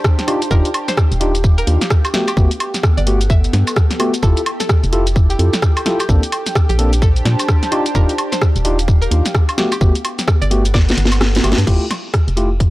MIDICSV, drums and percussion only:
0, 0, Header, 1, 2, 480
1, 0, Start_track
1, 0, Key_signature, -1, "major"
1, 0, Tempo, 465116
1, 525, Time_signature, 4, 2, 24, 8
1, 13106, End_track
2, 0, Start_track
2, 0, Title_t, "Drums"
2, 46, Note_on_c, 9, 36, 123
2, 48, Note_on_c, 9, 37, 123
2, 48, Note_on_c, 9, 82, 49
2, 149, Note_off_c, 9, 36, 0
2, 151, Note_off_c, 9, 37, 0
2, 151, Note_off_c, 9, 82, 0
2, 194, Note_on_c, 9, 40, 34
2, 194, Note_on_c, 9, 42, 53
2, 194, Note_on_c, 9, 82, 32
2, 288, Note_on_c, 9, 46, 113
2, 288, Note_on_c, 9, 76, 79
2, 297, Note_off_c, 9, 40, 0
2, 297, Note_off_c, 9, 42, 0
2, 297, Note_off_c, 9, 82, 0
2, 391, Note_off_c, 9, 46, 0
2, 391, Note_off_c, 9, 76, 0
2, 434, Note_on_c, 9, 42, 64
2, 434, Note_on_c, 9, 82, 60
2, 526, Note_on_c, 9, 36, 123
2, 527, Note_off_c, 9, 82, 0
2, 527, Note_on_c, 9, 82, 53
2, 537, Note_off_c, 9, 42, 0
2, 629, Note_off_c, 9, 36, 0
2, 630, Note_off_c, 9, 82, 0
2, 673, Note_on_c, 9, 42, 50
2, 673, Note_on_c, 9, 82, 31
2, 767, Note_on_c, 9, 46, 102
2, 767, Note_on_c, 9, 76, 86
2, 776, Note_off_c, 9, 42, 0
2, 776, Note_off_c, 9, 82, 0
2, 870, Note_off_c, 9, 46, 0
2, 870, Note_off_c, 9, 76, 0
2, 913, Note_on_c, 9, 40, 35
2, 913, Note_on_c, 9, 42, 66
2, 913, Note_on_c, 9, 82, 63
2, 1005, Note_on_c, 9, 36, 120
2, 1007, Note_off_c, 9, 82, 0
2, 1007, Note_on_c, 9, 37, 127
2, 1007, Note_on_c, 9, 82, 50
2, 1016, Note_off_c, 9, 40, 0
2, 1016, Note_off_c, 9, 42, 0
2, 1109, Note_off_c, 9, 36, 0
2, 1110, Note_off_c, 9, 37, 0
2, 1110, Note_off_c, 9, 82, 0
2, 1152, Note_on_c, 9, 42, 37
2, 1152, Note_on_c, 9, 82, 31
2, 1247, Note_on_c, 9, 46, 109
2, 1255, Note_off_c, 9, 42, 0
2, 1255, Note_off_c, 9, 82, 0
2, 1350, Note_off_c, 9, 46, 0
2, 1392, Note_on_c, 9, 42, 65
2, 1392, Note_on_c, 9, 82, 63
2, 1485, Note_on_c, 9, 36, 127
2, 1487, Note_off_c, 9, 82, 0
2, 1487, Note_on_c, 9, 82, 52
2, 1495, Note_off_c, 9, 42, 0
2, 1588, Note_off_c, 9, 36, 0
2, 1590, Note_off_c, 9, 82, 0
2, 1633, Note_on_c, 9, 42, 36
2, 1633, Note_on_c, 9, 82, 30
2, 1726, Note_on_c, 9, 46, 106
2, 1736, Note_off_c, 9, 42, 0
2, 1736, Note_off_c, 9, 82, 0
2, 1829, Note_off_c, 9, 46, 0
2, 1873, Note_on_c, 9, 40, 55
2, 1873, Note_on_c, 9, 42, 68
2, 1873, Note_on_c, 9, 82, 66
2, 1965, Note_on_c, 9, 36, 122
2, 1966, Note_off_c, 9, 82, 0
2, 1966, Note_on_c, 9, 37, 123
2, 1966, Note_on_c, 9, 82, 51
2, 1976, Note_off_c, 9, 40, 0
2, 1976, Note_off_c, 9, 42, 0
2, 2068, Note_off_c, 9, 36, 0
2, 2069, Note_off_c, 9, 37, 0
2, 2069, Note_off_c, 9, 82, 0
2, 2112, Note_on_c, 9, 42, 53
2, 2112, Note_on_c, 9, 76, 86
2, 2112, Note_on_c, 9, 82, 33
2, 2207, Note_on_c, 9, 40, 72
2, 2207, Note_on_c, 9, 46, 105
2, 2216, Note_off_c, 9, 42, 0
2, 2216, Note_off_c, 9, 76, 0
2, 2216, Note_off_c, 9, 82, 0
2, 2310, Note_off_c, 9, 40, 0
2, 2310, Note_off_c, 9, 46, 0
2, 2353, Note_on_c, 9, 42, 63
2, 2353, Note_on_c, 9, 76, 66
2, 2353, Note_on_c, 9, 82, 62
2, 2445, Note_on_c, 9, 36, 124
2, 2446, Note_off_c, 9, 82, 0
2, 2446, Note_on_c, 9, 82, 53
2, 2456, Note_off_c, 9, 42, 0
2, 2456, Note_off_c, 9, 76, 0
2, 2548, Note_off_c, 9, 36, 0
2, 2549, Note_off_c, 9, 82, 0
2, 2592, Note_on_c, 9, 42, 51
2, 2592, Note_on_c, 9, 82, 31
2, 2686, Note_on_c, 9, 46, 100
2, 2686, Note_on_c, 9, 76, 83
2, 2695, Note_off_c, 9, 42, 0
2, 2695, Note_off_c, 9, 82, 0
2, 2789, Note_off_c, 9, 46, 0
2, 2789, Note_off_c, 9, 76, 0
2, 2832, Note_on_c, 9, 40, 33
2, 2832, Note_on_c, 9, 42, 71
2, 2832, Note_on_c, 9, 82, 68
2, 2925, Note_on_c, 9, 36, 126
2, 2927, Note_off_c, 9, 82, 0
2, 2927, Note_on_c, 9, 37, 125
2, 2927, Note_on_c, 9, 82, 57
2, 2935, Note_off_c, 9, 40, 0
2, 2935, Note_off_c, 9, 42, 0
2, 3028, Note_off_c, 9, 36, 0
2, 3030, Note_off_c, 9, 37, 0
2, 3030, Note_off_c, 9, 82, 0
2, 3072, Note_on_c, 9, 42, 35
2, 3072, Note_on_c, 9, 82, 33
2, 3166, Note_on_c, 9, 46, 107
2, 3175, Note_off_c, 9, 42, 0
2, 3175, Note_off_c, 9, 82, 0
2, 3269, Note_off_c, 9, 46, 0
2, 3313, Note_on_c, 9, 42, 64
2, 3313, Note_on_c, 9, 82, 63
2, 3405, Note_on_c, 9, 36, 127
2, 3407, Note_off_c, 9, 82, 0
2, 3407, Note_on_c, 9, 82, 56
2, 3416, Note_off_c, 9, 42, 0
2, 3508, Note_off_c, 9, 36, 0
2, 3510, Note_off_c, 9, 82, 0
2, 3553, Note_on_c, 9, 42, 36
2, 3553, Note_on_c, 9, 82, 33
2, 3647, Note_on_c, 9, 40, 52
2, 3647, Note_on_c, 9, 46, 105
2, 3656, Note_off_c, 9, 42, 0
2, 3656, Note_off_c, 9, 82, 0
2, 3750, Note_off_c, 9, 40, 0
2, 3750, Note_off_c, 9, 46, 0
2, 3791, Note_on_c, 9, 42, 64
2, 3791, Note_on_c, 9, 76, 66
2, 3791, Note_on_c, 9, 82, 69
2, 3884, Note_on_c, 9, 36, 121
2, 3885, Note_off_c, 9, 82, 0
2, 3885, Note_on_c, 9, 37, 123
2, 3885, Note_on_c, 9, 82, 52
2, 3894, Note_off_c, 9, 42, 0
2, 3894, Note_off_c, 9, 76, 0
2, 3987, Note_off_c, 9, 36, 0
2, 3988, Note_off_c, 9, 37, 0
2, 3988, Note_off_c, 9, 82, 0
2, 4031, Note_on_c, 9, 40, 32
2, 4031, Note_on_c, 9, 42, 52
2, 4031, Note_on_c, 9, 82, 35
2, 4125, Note_on_c, 9, 46, 108
2, 4125, Note_on_c, 9, 76, 87
2, 4134, Note_off_c, 9, 40, 0
2, 4134, Note_off_c, 9, 42, 0
2, 4134, Note_off_c, 9, 82, 0
2, 4228, Note_off_c, 9, 46, 0
2, 4228, Note_off_c, 9, 76, 0
2, 4271, Note_on_c, 9, 42, 65
2, 4271, Note_on_c, 9, 82, 62
2, 4364, Note_on_c, 9, 36, 117
2, 4365, Note_off_c, 9, 82, 0
2, 4365, Note_on_c, 9, 82, 56
2, 4374, Note_off_c, 9, 42, 0
2, 4467, Note_off_c, 9, 36, 0
2, 4468, Note_off_c, 9, 82, 0
2, 4511, Note_on_c, 9, 42, 50
2, 4511, Note_on_c, 9, 82, 32
2, 4605, Note_on_c, 9, 46, 106
2, 4605, Note_on_c, 9, 76, 85
2, 4614, Note_off_c, 9, 42, 0
2, 4614, Note_off_c, 9, 82, 0
2, 4708, Note_off_c, 9, 46, 0
2, 4708, Note_off_c, 9, 76, 0
2, 4750, Note_on_c, 9, 40, 33
2, 4750, Note_on_c, 9, 42, 71
2, 4750, Note_on_c, 9, 82, 69
2, 4844, Note_off_c, 9, 82, 0
2, 4844, Note_on_c, 9, 36, 121
2, 4844, Note_on_c, 9, 37, 122
2, 4844, Note_on_c, 9, 82, 58
2, 4853, Note_off_c, 9, 40, 0
2, 4853, Note_off_c, 9, 42, 0
2, 4947, Note_off_c, 9, 36, 0
2, 4947, Note_off_c, 9, 37, 0
2, 4947, Note_off_c, 9, 82, 0
2, 4990, Note_on_c, 9, 42, 37
2, 4990, Note_on_c, 9, 82, 34
2, 5084, Note_on_c, 9, 46, 104
2, 5094, Note_off_c, 9, 42, 0
2, 5094, Note_off_c, 9, 82, 0
2, 5187, Note_off_c, 9, 46, 0
2, 5231, Note_on_c, 9, 42, 69
2, 5231, Note_on_c, 9, 82, 70
2, 5324, Note_on_c, 9, 36, 124
2, 5326, Note_off_c, 9, 82, 0
2, 5326, Note_on_c, 9, 82, 55
2, 5334, Note_off_c, 9, 42, 0
2, 5427, Note_off_c, 9, 36, 0
2, 5429, Note_off_c, 9, 82, 0
2, 5471, Note_on_c, 9, 42, 39
2, 5471, Note_on_c, 9, 82, 33
2, 5566, Note_on_c, 9, 46, 102
2, 5574, Note_off_c, 9, 42, 0
2, 5574, Note_off_c, 9, 82, 0
2, 5669, Note_off_c, 9, 46, 0
2, 5712, Note_on_c, 9, 40, 53
2, 5712, Note_on_c, 9, 42, 70
2, 5712, Note_on_c, 9, 82, 71
2, 5804, Note_on_c, 9, 36, 117
2, 5805, Note_off_c, 9, 82, 0
2, 5805, Note_on_c, 9, 37, 116
2, 5805, Note_on_c, 9, 82, 53
2, 5815, Note_off_c, 9, 40, 0
2, 5815, Note_off_c, 9, 42, 0
2, 5907, Note_off_c, 9, 36, 0
2, 5909, Note_off_c, 9, 37, 0
2, 5909, Note_off_c, 9, 82, 0
2, 5952, Note_on_c, 9, 42, 55
2, 5952, Note_on_c, 9, 76, 87
2, 5952, Note_on_c, 9, 82, 34
2, 6046, Note_on_c, 9, 40, 66
2, 6046, Note_on_c, 9, 46, 106
2, 6055, Note_off_c, 9, 42, 0
2, 6055, Note_off_c, 9, 76, 0
2, 6055, Note_off_c, 9, 82, 0
2, 6149, Note_off_c, 9, 40, 0
2, 6149, Note_off_c, 9, 46, 0
2, 6193, Note_on_c, 9, 42, 68
2, 6193, Note_on_c, 9, 76, 60
2, 6193, Note_on_c, 9, 82, 65
2, 6284, Note_on_c, 9, 36, 116
2, 6287, Note_off_c, 9, 82, 0
2, 6287, Note_on_c, 9, 82, 55
2, 6296, Note_off_c, 9, 42, 0
2, 6296, Note_off_c, 9, 76, 0
2, 6387, Note_off_c, 9, 36, 0
2, 6390, Note_off_c, 9, 82, 0
2, 6432, Note_on_c, 9, 42, 57
2, 6432, Note_on_c, 9, 82, 32
2, 6526, Note_on_c, 9, 46, 108
2, 6526, Note_on_c, 9, 76, 82
2, 6535, Note_off_c, 9, 42, 0
2, 6535, Note_off_c, 9, 82, 0
2, 6629, Note_off_c, 9, 46, 0
2, 6629, Note_off_c, 9, 76, 0
2, 6671, Note_on_c, 9, 40, 32
2, 6671, Note_on_c, 9, 42, 74
2, 6671, Note_on_c, 9, 82, 70
2, 6764, Note_on_c, 9, 36, 115
2, 6766, Note_off_c, 9, 82, 0
2, 6766, Note_on_c, 9, 37, 123
2, 6766, Note_on_c, 9, 82, 56
2, 6775, Note_off_c, 9, 40, 0
2, 6775, Note_off_c, 9, 42, 0
2, 6867, Note_off_c, 9, 36, 0
2, 6869, Note_off_c, 9, 37, 0
2, 6869, Note_off_c, 9, 82, 0
2, 6912, Note_on_c, 9, 42, 41
2, 6912, Note_on_c, 9, 82, 36
2, 7006, Note_on_c, 9, 46, 107
2, 7015, Note_off_c, 9, 42, 0
2, 7015, Note_off_c, 9, 82, 0
2, 7109, Note_off_c, 9, 46, 0
2, 7151, Note_on_c, 9, 42, 71
2, 7151, Note_on_c, 9, 82, 65
2, 7244, Note_on_c, 9, 36, 117
2, 7246, Note_off_c, 9, 82, 0
2, 7246, Note_on_c, 9, 82, 55
2, 7254, Note_off_c, 9, 42, 0
2, 7348, Note_off_c, 9, 36, 0
2, 7350, Note_off_c, 9, 82, 0
2, 7392, Note_on_c, 9, 42, 38
2, 7392, Note_on_c, 9, 82, 33
2, 7487, Note_on_c, 9, 40, 52
2, 7487, Note_on_c, 9, 46, 109
2, 7496, Note_off_c, 9, 42, 0
2, 7496, Note_off_c, 9, 82, 0
2, 7590, Note_off_c, 9, 40, 0
2, 7590, Note_off_c, 9, 46, 0
2, 7631, Note_on_c, 9, 42, 73
2, 7631, Note_on_c, 9, 76, 65
2, 7631, Note_on_c, 9, 82, 69
2, 7724, Note_on_c, 9, 36, 115
2, 7725, Note_off_c, 9, 82, 0
2, 7725, Note_on_c, 9, 37, 111
2, 7725, Note_on_c, 9, 82, 58
2, 7734, Note_off_c, 9, 42, 0
2, 7734, Note_off_c, 9, 76, 0
2, 7828, Note_off_c, 9, 36, 0
2, 7828, Note_off_c, 9, 37, 0
2, 7828, Note_off_c, 9, 82, 0
2, 7871, Note_on_c, 9, 40, 31
2, 7871, Note_on_c, 9, 42, 56
2, 7871, Note_on_c, 9, 82, 36
2, 7966, Note_on_c, 9, 46, 106
2, 7966, Note_on_c, 9, 76, 81
2, 7975, Note_off_c, 9, 40, 0
2, 7975, Note_off_c, 9, 42, 0
2, 7975, Note_off_c, 9, 82, 0
2, 8069, Note_off_c, 9, 46, 0
2, 8069, Note_off_c, 9, 76, 0
2, 8111, Note_on_c, 9, 42, 71
2, 8111, Note_on_c, 9, 82, 68
2, 8205, Note_off_c, 9, 82, 0
2, 8205, Note_on_c, 9, 36, 113
2, 8205, Note_on_c, 9, 82, 57
2, 8214, Note_off_c, 9, 42, 0
2, 8308, Note_off_c, 9, 36, 0
2, 8309, Note_off_c, 9, 82, 0
2, 8352, Note_on_c, 9, 42, 55
2, 8352, Note_on_c, 9, 82, 32
2, 8446, Note_on_c, 9, 46, 110
2, 8446, Note_on_c, 9, 76, 79
2, 8455, Note_off_c, 9, 42, 0
2, 8455, Note_off_c, 9, 82, 0
2, 8549, Note_off_c, 9, 46, 0
2, 8549, Note_off_c, 9, 76, 0
2, 8592, Note_on_c, 9, 40, 33
2, 8592, Note_on_c, 9, 42, 74
2, 8592, Note_on_c, 9, 82, 68
2, 8685, Note_on_c, 9, 36, 108
2, 8686, Note_off_c, 9, 82, 0
2, 8686, Note_on_c, 9, 37, 116
2, 8686, Note_on_c, 9, 82, 52
2, 8695, Note_off_c, 9, 40, 0
2, 8695, Note_off_c, 9, 42, 0
2, 8788, Note_off_c, 9, 36, 0
2, 8789, Note_off_c, 9, 37, 0
2, 8789, Note_off_c, 9, 82, 0
2, 8831, Note_on_c, 9, 42, 41
2, 8831, Note_on_c, 9, 82, 35
2, 8925, Note_on_c, 9, 46, 110
2, 8934, Note_off_c, 9, 42, 0
2, 8934, Note_off_c, 9, 82, 0
2, 9029, Note_off_c, 9, 46, 0
2, 9072, Note_on_c, 9, 42, 68
2, 9072, Note_on_c, 9, 82, 66
2, 9165, Note_on_c, 9, 36, 118
2, 9166, Note_off_c, 9, 82, 0
2, 9166, Note_on_c, 9, 82, 57
2, 9175, Note_off_c, 9, 42, 0
2, 9268, Note_off_c, 9, 36, 0
2, 9269, Note_off_c, 9, 82, 0
2, 9312, Note_on_c, 9, 42, 39
2, 9312, Note_on_c, 9, 82, 32
2, 9407, Note_on_c, 9, 46, 117
2, 9415, Note_off_c, 9, 42, 0
2, 9415, Note_off_c, 9, 82, 0
2, 9510, Note_off_c, 9, 46, 0
2, 9552, Note_on_c, 9, 40, 53
2, 9552, Note_on_c, 9, 42, 75
2, 9552, Note_on_c, 9, 82, 66
2, 9645, Note_on_c, 9, 36, 113
2, 9647, Note_off_c, 9, 82, 0
2, 9647, Note_on_c, 9, 37, 112
2, 9647, Note_on_c, 9, 82, 53
2, 9656, Note_off_c, 9, 40, 0
2, 9656, Note_off_c, 9, 42, 0
2, 9748, Note_off_c, 9, 36, 0
2, 9750, Note_off_c, 9, 37, 0
2, 9750, Note_off_c, 9, 82, 0
2, 9792, Note_on_c, 9, 42, 58
2, 9792, Note_on_c, 9, 76, 81
2, 9792, Note_on_c, 9, 82, 33
2, 9886, Note_on_c, 9, 40, 67
2, 9886, Note_on_c, 9, 46, 108
2, 9895, Note_off_c, 9, 42, 0
2, 9895, Note_off_c, 9, 76, 0
2, 9895, Note_off_c, 9, 82, 0
2, 9989, Note_off_c, 9, 40, 0
2, 9989, Note_off_c, 9, 46, 0
2, 10031, Note_on_c, 9, 42, 68
2, 10031, Note_on_c, 9, 76, 58
2, 10031, Note_on_c, 9, 82, 61
2, 10125, Note_on_c, 9, 36, 119
2, 10126, Note_off_c, 9, 82, 0
2, 10126, Note_on_c, 9, 82, 53
2, 10135, Note_off_c, 9, 42, 0
2, 10135, Note_off_c, 9, 76, 0
2, 10228, Note_off_c, 9, 36, 0
2, 10229, Note_off_c, 9, 82, 0
2, 10273, Note_on_c, 9, 42, 56
2, 10273, Note_on_c, 9, 82, 31
2, 10368, Note_on_c, 9, 46, 110
2, 10368, Note_on_c, 9, 76, 75
2, 10376, Note_off_c, 9, 42, 0
2, 10376, Note_off_c, 9, 82, 0
2, 10471, Note_off_c, 9, 46, 0
2, 10471, Note_off_c, 9, 76, 0
2, 10514, Note_on_c, 9, 40, 34
2, 10514, Note_on_c, 9, 42, 72
2, 10514, Note_on_c, 9, 82, 67
2, 10605, Note_on_c, 9, 36, 115
2, 10608, Note_off_c, 9, 82, 0
2, 10608, Note_on_c, 9, 37, 122
2, 10608, Note_on_c, 9, 82, 54
2, 10617, Note_off_c, 9, 40, 0
2, 10617, Note_off_c, 9, 42, 0
2, 10708, Note_off_c, 9, 36, 0
2, 10711, Note_off_c, 9, 37, 0
2, 10711, Note_off_c, 9, 82, 0
2, 10754, Note_on_c, 9, 42, 40
2, 10754, Note_on_c, 9, 82, 33
2, 10848, Note_on_c, 9, 46, 112
2, 10857, Note_off_c, 9, 42, 0
2, 10857, Note_off_c, 9, 82, 0
2, 10951, Note_off_c, 9, 46, 0
2, 10994, Note_on_c, 9, 42, 67
2, 10994, Note_on_c, 9, 82, 63
2, 11085, Note_on_c, 9, 36, 118
2, 11088, Note_off_c, 9, 82, 0
2, 11088, Note_on_c, 9, 38, 67
2, 11088, Note_on_c, 9, 82, 52
2, 11097, Note_off_c, 9, 42, 0
2, 11188, Note_off_c, 9, 36, 0
2, 11191, Note_off_c, 9, 38, 0
2, 11191, Note_off_c, 9, 82, 0
2, 11235, Note_on_c, 9, 42, 39
2, 11235, Note_on_c, 9, 82, 32
2, 11248, Note_on_c, 9, 38, 80
2, 11327, Note_on_c, 9, 46, 113
2, 11338, Note_off_c, 9, 42, 0
2, 11338, Note_off_c, 9, 82, 0
2, 11352, Note_off_c, 9, 38, 0
2, 11408, Note_on_c, 9, 38, 83
2, 11430, Note_off_c, 9, 46, 0
2, 11473, Note_on_c, 9, 42, 76
2, 11473, Note_on_c, 9, 76, 61
2, 11473, Note_on_c, 9, 82, 63
2, 11511, Note_off_c, 9, 38, 0
2, 11567, Note_off_c, 9, 82, 0
2, 11567, Note_on_c, 9, 37, 113
2, 11567, Note_on_c, 9, 38, 86
2, 11567, Note_on_c, 9, 82, 52
2, 11577, Note_off_c, 9, 42, 0
2, 11577, Note_off_c, 9, 76, 0
2, 11671, Note_off_c, 9, 37, 0
2, 11671, Note_off_c, 9, 38, 0
2, 11671, Note_off_c, 9, 82, 0
2, 11713, Note_on_c, 9, 42, 60
2, 11713, Note_on_c, 9, 82, 33
2, 11727, Note_on_c, 9, 38, 101
2, 11806, Note_on_c, 9, 46, 116
2, 11806, Note_on_c, 9, 76, 77
2, 11816, Note_off_c, 9, 42, 0
2, 11816, Note_off_c, 9, 82, 0
2, 11831, Note_off_c, 9, 38, 0
2, 11887, Note_on_c, 9, 38, 105
2, 11910, Note_off_c, 9, 46, 0
2, 11910, Note_off_c, 9, 76, 0
2, 11953, Note_on_c, 9, 42, 70
2, 11953, Note_on_c, 9, 82, 60
2, 11990, Note_off_c, 9, 38, 0
2, 12045, Note_on_c, 9, 36, 112
2, 12047, Note_off_c, 9, 42, 0
2, 12047, Note_on_c, 9, 42, 65
2, 12047, Note_on_c, 9, 49, 96
2, 12056, Note_off_c, 9, 82, 0
2, 12148, Note_off_c, 9, 36, 0
2, 12150, Note_off_c, 9, 42, 0
2, 12150, Note_off_c, 9, 49, 0
2, 12287, Note_on_c, 9, 40, 51
2, 12287, Note_on_c, 9, 46, 105
2, 12287, Note_on_c, 9, 76, 70
2, 12390, Note_off_c, 9, 40, 0
2, 12390, Note_off_c, 9, 46, 0
2, 12390, Note_off_c, 9, 76, 0
2, 12525, Note_on_c, 9, 36, 111
2, 12527, Note_on_c, 9, 37, 109
2, 12527, Note_on_c, 9, 42, 65
2, 12628, Note_off_c, 9, 36, 0
2, 12630, Note_off_c, 9, 37, 0
2, 12630, Note_off_c, 9, 42, 0
2, 12672, Note_on_c, 9, 42, 36
2, 12766, Note_on_c, 9, 46, 93
2, 12776, Note_off_c, 9, 42, 0
2, 12869, Note_off_c, 9, 46, 0
2, 13005, Note_on_c, 9, 36, 111
2, 13007, Note_on_c, 9, 42, 63
2, 13106, Note_off_c, 9, 36, 0
2, 13106, Note_off_c, 9, 42, 0
2, 13106, End_track
0, 0, End_of_file